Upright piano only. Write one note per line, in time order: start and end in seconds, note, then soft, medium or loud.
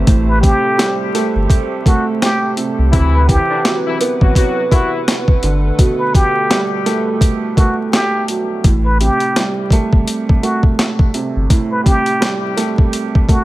0.00 0.42 C3 medium
0.00 1.15 A3 loud
0.07 1.86 A2 loud
0.43 2.22 C3 medium
0.78 2.57 G3 medium
1.15 1.85 A3 loud
1.87 2.93 A3 medium
2.57 2.92 C3 medium
2.93 4.72 C3 medium
3.29 5.08 E3 medium
3.66 5.44 F#3 medium
4.01 4.70 B3 loud
4.71 5.43 B3 medium
5.43 7.22 D3 medium
5.79 7.57 B2 medium
6.50 8.29 G3 medium
6.86 7.56 A3 loud
7.58 8.65 A3 medium
8.29 8.64 F#3 medium
8.64 10.43 A2 medium
9.01 10.79 C3 medium
9.36 11.15 G3 medium
9.73 10.42 A3 loud
10.43 12.22 A3 medium
11.14 11.85 C3 medium
11.50 13.29 A2 medium
11.86 13.44 C3 medium
12.21 13.44 G3 medium
12.57 13.28 A3 medium
13.29 13.44 A3 medium